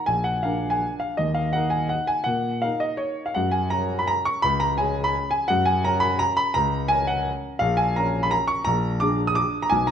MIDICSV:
0, 0, Header, 1, 2, 480
1, 0, Start_track
1, 0, Tempo, 364742
1, 114, Time_signature, 3, 2, 24, 8
1, 5400, Tempo, 351083
1, 13339, End_track
2, 0, Start_track
2, 0, Title_t, "Grand piano"
2, 0, Program_c, 0, 0
2, 83, Note_on_c, 0, 80, 82
2, 103, Note_on_c, 0, 34, 52
2, 316, Note_on_c, 0, 78, 73
2, 332, Note_off_c, 0, 80, 0
2, 366, Control_c, 0, 64, 127
2, 564, Note_on_c, 0, 77, 70
2, 568, Note_off_c, 0, 34, 0
2, 573, Note_off_c, 0, 78, 0
2, 592, Note_on_c, 0, 62, 43
2, 593, Note_on_c, 0, 70, 44
2, 922, Note_on_c, 0, 80, 74
2, 943, Note_off_c, 0, 77, 0
2, 1089, Control_c, 0, 64, 0
2, 1307, Note_off_c, 0, 80, 0
2, 1311, Note_on_c, 0, 77, 68
2, 1512, Note_off_c, 0, 62, 0
2, 1512, Note_off_c, 0, 70, 0
2, 1544, Note_on_c, 0, 75, 74
2, 1556, Note_off_c, 0, 77, 0
2, 1564, Note_on_c, 0, 39, 54
2, 1770, Note_on_c, 0, 77, 72
2, 1792, Note_off_c, 0, 75, 0
2, 1801, Control_c, 0, 64, 127
2, 2010, Note_on_c, 0, 78, 77
2, 2030, Note_off_c, 0, 77, 0
2, 2032, Note_off_c, 0, 39, 0
2, 2035, Note_on_c, 0, 70, 47
2, 2037, Note_on_c, 0, 63, 42
2, 2238, Note_on_c, 0, 80, 70
2, 2274, Note_off_c, 0, 78, 0
2, 2489, Note_on_c, 0, 78, 74
2, 2509, Note_off_c, 0, 80, 0
2, 2553, Control_c, 0, 64, 0
2, 2730, Note_on_c, 0, 80, 75
2, 2753, Note_off_c, 0, 78, 0
2, 2945, Note_on_c, 0, 78, 80
2, 2948, Note_off_c, 0, 70, 0
2, 2949, Note_off_c, 0, 63, 0
2, 2977, Note_on_c, 0, 46, 58
2, 2983, Note_off_c, 0, 80, 0
2, 3236, Control_c, 0, 64, 127
2, 3444, Note_on_c, 0, 77, 77
2, 3446, Note_off_c, 0, 78, 0
2, 3448, Note_off_c, 0, 46, 0
2, 3472, Note_on_c, 0, 63, 45
2, 3476, Note_on_c, 0, 70, 47
2, 3493, Control_c, 0, 64, 0
2, 3686, Note_on_c, 0, 75, 76
2, 3703, Note_off_c, 0, 77, 0
2, 3913, Note_on_c, 0, 73, 74
2, 3947, Note_off_c, 0, 75, 0
2, 4286, Note_on_c, 0, 77, 72
2, 4298, Note_off_c, 0, 73, 0
2, 4385, Note_off_c, 0, 63, 0
2, 4387, Note_off_c, 0, 70, 0
2, 4402, Note_on_c, 0, 78, 75
2, 4421, Note_off_c, 0, 77, 0
2, 4424, Note_on_c, 0, 42, 61
2, 4625, Note_on_c, 0, 80, 78
2, 4655, Note_off_c, 0, 78, 0
2, 4666, Control_c, 0, 64, 127
2, 4873, Note_on_c, 0, 82, 88
2, 4890, Note_off_c, 0, 80, 0
2, 4892, Note_off_c, 0, 42, 0
2, 4892, Note_on_c, 0, 70, 49
2, 4901, Note_on_c, 0, 61, 46
2, 5248, Note_on_c, 0, 83, 74
2, 5260, Note_off_c, 0, 82, 0
2, 5362, Note_on_c, 0, 82, 91
2, 5385, Note_off_c, 0, 83, 0
2, 5412, Control_c, 0, 64, 0
2, 5607, Note_on_c, 0, 85, 86
2, 5624, Note_off_c, 0, 82, 0
2, 5812, Note_off_c, 0, 70, 0
2, 5816, Note_off_c, 0, 61, 0
2, 5839, Note_on_c, 0, 83, 100
2, 5859, Note_off_c, 0, 85, 0
2, 5862, Note_on_c, 0, 37, 64
2, 6077, Note_on_c, 0, 82, 90
2, 6093, Note_off_c, 0, 83, 0
2, 6131, Control_c, 0, 64, 127
2, 6321, Note_on_c, 0, 80, 82
2, 6330, Note_off_c, 0, 37, 0
2, 6334, Note_off_c, 0, 82, 0
2, 6345, Note_on_c, 0, 61, 47
2, 6359, Note_on_c, 0, 68, 51
2, 6679, Note_on_c, 0, 83, 89
2, 6702, Note_off_c, 0, 80, 0
2, 6849, Control_c, 0, 64, 0
2, 7045, Note_on_c, 0, 80, 85
2, 7057, Note_off_c, 0, 83, 0
2, 7243, Note_off_c, 0, 61, 0
2, 7250, Note_off_c, 0, 68, 0
2, 7281, Note_on_c, 0, 78, 95
2, 7285, Note_off_c, 0, 80, 0
2, 7312, Note_on_c, 0, 42, 65
2, 7518, Note_off_c, 0, 78, 0
2, 7522, Note_on_c, 0, 80, 90
2, 7532, Control_c, 0, 64, 127
2, 7760, Note_off_c, 0, 42, 0
2, 7765, Note_off_c, 0, 80, 0
2, 7781, Note_on_c, 0, 82, 93
2, 7796, Note_on_c, 0, 61, 52
2, 7805, Note_on_c, 0, 70, 55
2, 7995, Note_on_c, 0, 83, 94
2, 8026, Note_off_c, 0, 82, 0
2, 8253, Note_on_c, 0, 82, 98
2, 8261, Note_off_c, 0, 83, 0
2, 8291, Control_c, 0, 64, 0
2, 8495, Note_on_c, 0, 83, 94
2, 8514, Note_off_c, 0, 82, 0
2, 8725, Note_off_c, 0, 61, 0
2, 8729, Note_off_c, 0, 70, 0
2, 8732, Note_on_c, 0, 82, 98
2, 8751, Note_off_c, 0, 83, 0
2, 8757, Note_on_c, 0, 37, 68
2, 9046, Control_c, 0, 64, 127
2, 9202, Note_on_c, 0, 80, 101
2, 9230, Note_on_c, 0, 61, 52
2, 9233, Note_off_c, 0, 37, 0
2, 9234, Note_on_c, 0, 70, 57
2, 9236, Note_off_c, 0, 82, 0
2, 9461, Note_on_c, 0, 78, 82
2, 9474, Note_off_c, 0, 80, 0
2, 9725, Note_off_c, 0, 78, 0
2, 9754, Control_c, 0, 64, 0
2, 10146, Note_off_c, 0, 61, 0
2, 10148, Note_off_c, 0, 70, 0
2, 10170, Note_on_c, 0, 77, 97
2, 10194, Note_on_c, 0, 34, 67
2, 10412, Note_on_c, 0, 80, 85
2, 10424, Note_off_c, 0, 77, 0
2, 10450, Control_c, 0, 64, 127
2, 10661, Note_off_c, 0, 34, 0
2, 10667, Note_off_c, 0, 80, 0
2, 10677, Note_on_c, 0, 82, 80
2, 10698, Note_on_c, 0, 61, 52
2, 10699, Note_on_c, 0, 70, 57
2, 11041, Note_on_c, 0, 83, 86
2, 11042, Note_off_c, 0, 82, 0
2, 11149, Note_on_c, 0, 82, 97
2, 11166, Note_off_c, 0, 83, 0
2, 11184, Control_c, 0, 64, 0
2, 11378, Note_on_c, 0, 85, 92
2, 11403, Note_off_c, 0, 82, 0
2, 11600, Note_off_c, 0, 61, 0
2, 11601, Note_off_c, 0, 70, 0
2, 11610, Note_on_c, 0, 82, 98
2, 11631, Note_off_c, 0, 85, 0
2, 11638, Note_on_c, 0, 34, 70
2, 11882, Control_c, 0, 64, 127
2, 12095, Note_on_c, 0, 86, 92
2, 12105, Note_off_c, 0, 34, 0
2, 12105, Note_off_c, 0, 82, 0
2, 12121, Note_on_c, 0, 62, 52
2, 12126, Note_on_c, 0, 68, 56
2, 12470, Note_on_c, 0, 87, 87
2, 12474, Note_off_c, 0, 86, 0
2, 12577, Note_on_c, 0, 86, 98
2, 12602, Note_off_c, 0, 87, 0
2, 12627, Control_c, 0, 64, 0
2, 12949, Note_on_c, 0, 82, 86
2, 12954, Note_off_c, 0, 86, 0
2, 13031, Note_off_c, 0, 62, 0
2, 13033, Note_off_c, 0, 68, 0
2, 13046, Note_on_c, 0, 80, 97
2, 13076, Note_off_c, 0, 82, 0
2, 13076, Note_on_c, 0, 35, 65
2, 13286, Note_on_c, 0, 82, 90
2, 13303, Note_off_c, 0, 80, 0
2, 13306, Control_c, 0, 64, 127
2, 13339, Note_off_c, 0, 35, 0
2, 13339, Note_off_c, 0, 82, 0
2, 13339, End_track
0, 0, End_of_file